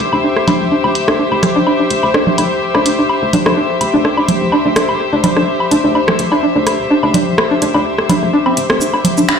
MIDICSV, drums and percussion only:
0, 0, Header, 1, 2, 480
1, 0, Start_track
1, 0, Tempo, 476190
1, 1200, Time_signature, 4, 2, 24, 8
1, 9470, End_track
2, 0, Start_track
2, 0, Title_t, "Drums"
2, 0, Note_on_c, 9, 42, 84
2, 100, Note_off_c, 9, 42, 0
2, 128, Note_on_c, 9, 77, 43
2, 229, Note_off_c, 9, 77, 0
2, 367, Note_on_c, 9, 37, 34
2, 468, Note_off_c, 9, 37, 0
2, 480, Note_on_c, 9, 42, 88
2, 480, Note_on_c, 9, 64, 72
2, 480, Note_on_c, 9, 77, 41
2, 581, Note_off_c, 9, 42, 0
2, 581, Note_off_c, 9, 64, 0
2, 581, Note_off_c, 9, 77, 0
2, 848, Note_on_c, 9, 77, 44
2, 949, Note_off_c, 9, 77, 0
2, 960, Note_on_c, 9, 42, 85
2, 1061, Note_off_c, 9, 42, 0
2, 1088, Note_on_c, 9, 37, 68
2, 1189, Note_off_c, 9, 37, 0
2, 1328, Note_on_c, 9, 77, 39
2, 1429, Note_off_c, 9, 77, 0
2, 1440, Note_on_c, 9, 37, 34
2, 1440, Note_on_c, 9, 42, 86
2, 1440, Note_on_c, 9, 64, 73
2, 1540, Note_off_c, 9, 37, 0
2, 1540, Note_off_c, 9, 64, 0
2, 1541, Note_off_c, 9, 42, 0
2, 1680, Note_on_c, 9, 77, 38
2, 1781, Note_off_c, 9, 77, 0
2, 1920, Note_on_c, 9, 42, 81
2, 2021, Note_off_c, 9, 42, 0
2, 2048, Note_on_c, 9, 77, 44
2, 2149, Note_off_c, 9, 77, 0
2, 2160, Note_on_c, 9, 37, 68
2, 2261, Note_off_c, 9, 37, 0
2, 2288, Note_on_c, 9, 64, 67
2, 2389, Note_off_c, 9, 64, 0
2, 2400, Note_on_c, 9, 42, 85
2, 2400, Note_on_c, 9, 77, 41
2, 2501, Note_off_c, 9, 42, 0
2, 2501, Note_off_c, 9, 77, 0
2, 2768, Note_on_c, 9, 37, 36
2, 2768, Note_on_c, 9, 77, 42
2, 2869, Note_off_c, 9, 37, 0
2, 2869, Note_off_c, 9, 77, 0
2, 2880, Note_on_c, 9, 42, 86
2, 2981, Note_off_c, 9, 42, 0
2, 3120, Note_on_c, 9, 77, 41
2, 3221, Note_off_c, 9, 77, 0
2, 3359, Note_on_c, 9, 64, 73
2, 3360, Note_on_c, 9, 42, 85
2, 3460, Note_off_c, 9, 42, 0
2, 3460, Note_off_c, 9, 64, 0
2, 3488, Note_on_c, 9, 37, 68
2, 3488, Note_on_c, 9, 77, 38
2, 3589, Note_off_c, 9, 37, 0
2, 3589, Note_off_c, 9, 77, 0
2, 3840, Note_on_c, 9, 42, 80
2, 3840, Note_on_c, 9, 77, 38
2, 3940, Note_off_c, 9, 42, 0
2, 3940, Note_off_c, 9, 77, 0
2, 4080, Note_on_c, 9, 37, 38
2, 4181, Note_off_c, 9, 37, 0
2, 4208, Note_on_c, 9, 77, 41
2, 4309, Note_off_c, 9, 77, 0
2, 4319, Note_on_c, 9, 42, 78
2, 4319, Note_on_c, 9, 64, 68
2, 4420, Note_off_c, 9, 42, 0
2, 4420, Note_off_c, 9, 64, 0
2, 4559, Note_on_c, 9, 77, 40
2, 4659, Note_off_c, 9, 77, 0
2, 4799, Note_on_c, 9, 37, 72
2, 4799, Note_on_c, 9, 42, 80
2, 4899, Note_off_c, 9, 37, 0
2, 4900, Note_off_c, 9, 42, 0
2, 4927, Note_on_c, 9, 77, 40
2, 5028, Note_off_c, 9, 77, 0
2, 5279, Note_on_c, 9, 42, 80
2, 5280, Note_on_c, 9, 64, 74
2, 5280, Note_on_c, 9, 77, 38
2, 5380, Note_off_c, 9, 42, 0
2, 5380, Note_off_c, 9, 64, 0
2, 5380, Note_off_c, 9, 77, 0
2, 5408, Note_on_c, 9, 37, 35
2, 5509, Note_off_c, 9, 37, 0
2, 5647, Note_on_c, 9, 77, 39
2, 5748, Note_off_c, 9, 77, 0
2, 5760, Note_on_c, 9, 42, 78
2, 5860, Note_off_c, 9, 42, 0
2, 5999, Note_on_c, 9, 77, 40
2, 6100, Note_off_c, 9, 77, 0
2, 6127, Note_on_c, 9, 37, 76
2, 6127, Note_on_c, 9, 64, 70
2, 6228, Note_off_c, 9, 37, 0
2, 6228, Note_off_c, 9, 64, 0
2, 6239, Note_on_c, 9, 42, 82
2, 6340, Note_off_c, 9, 42, 0
2, 6368, Note_on_c, 9, 77, 39
2, 6469, Note_off_c, 9, 77, 0
2, 6719, Note_on_c, 9, 42, 77
2, 6720, Note_on_c, 9, 37, 38
2, 6720, Note_on_c, 9, 77, 42
2, 6820, Note_off_c, 9, 37, 0
2, 6820, Note_off_c, 9, 42, 0
2, 6820, Note_off_c, 9, 77, 0
2, 7087, Note_on_c, 9, 77, 40
2, 7188, Note_off_c, 9, 77, 0
2, 7199, Note_on_c, 9, 64, 77
2, 7200, Note_on_c, 9, 42, 85
2, 7300, Note_off_c, 9, 42, 0
2, 7300, Note_off_c, 9, 64, 0
2, 7439, Note_on_c, 9, 37, 74
2, 7439, Note_on_c, 9, 77, 38
2, 7540, Note_off_c, 9, 37, 0
2, 7540, Note_off_c, 9, 77, 0
2, 7680, Note_on_c, 9, 42, 80
2, 7780, Note_off_c, 9, 42, 0
2, 7807, Note_on_c, 9, 77, 42
2, 7908, Note_off_c, 9, 77, 0
2, 8048, Note_on_c, 9, 37, 38
2, 8149, Note_off_c, 9, 37, 0
2, 8159, Note_on_c, 9, 64, 74
2, 8159, Note_on_c, 9, 77, 38
2, 8160, Note_on_c, 9, 42, 82
2, 8260, Note_off_c, 9, 64, 0
2, 8260, Note_off_c, 9, 77, 0
2, 8261, Note_off_c, 9, 42, 0
2, 8528, Note_on_c, 9, 77, 42
2, 8629, Note_off_c, 9, 77, 0
2, 8639, Note_on_c, 9, 42, 80
2, 8740, Note_off_c, 9, 42, 0
2, 8767, Note_on_c, 9, 37, 76
2, 8868, Note_off_c, 9, 37, 0
2, 8880, Note_on_c, 9, 82, 48
2, 8980, Note_off_c, 9, 82, 0
2, 9007, Note_on_c, 9, 77, 41
2, 9108, Note_off_c, 9, 77, 0
2, 9118, Note_on_c, 9, 64, 80
2, 9120, Note_on_c, 9, 42, 88
2, 9219, Note_off_c, 9, 64, 0
2, 9220, Note_off_c, 9, 42, 0
2, 9248, Note_on_c, 9, 82, 43
2, 9349, Note_off_c, 9, 82, 0
2, 9359, Note_on_c, 9, 77, 41
2, 9360, Note_on_c, 9, 26, 90
2, 9460, Note_off_c, 9, 77, 0
2, 9461, Note_off_c, 9, 26, 0
2, 9470, End_track
0, 0, End_of_file